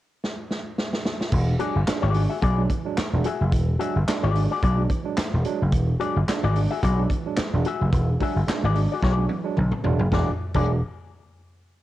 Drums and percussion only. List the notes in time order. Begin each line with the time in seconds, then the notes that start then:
0.24 snare
0.51 snare
0.78 snare
0.93 snare
1.06 snare
1.21 snare
1.32 kick, crash
1.59 closed hi-hat
1.87 snare, clap, closed hi-hat
2.14 open hi-hat
2.42 kick, closed hi-hat
2.69 kick, closed hi-hat
2.98 snare, clap, closed hi-hat
3.24 closed hi-hat
3.52 kick, closed hi-hat
3.80 closed hi-hat
4.07 snare, clap, closed hi-hat
4.35 open hi-hat
4.62 kick, closed hi-hat
4.90 kick, closed hi-hat
5.18 snare, clap, closed hi-hat
5.45 closed hi-hat
5.72 kick, closed hi-hat
6.00 closed hi-hat
6.28 snare, clap, closed hi-hat
6.56 open hi-hat
6.83 kick, closed hi-hat
7.10 kick, closed hi-hat
7.37 snare, clap, closed hi-hat
7.65 closed hi-hat
7.92 kick, closed hi-hat
8.20 kick, open hi-hat
8.48 snare, clap, closed hi-hat
8.75 open hi-hat
9.03 kick, snare
9.29 high tom
9.57 mid tom
9.72 mid tom
9.84 floor tom
9.99 floor tom
10.12 kick, snare
10.54 kick, crash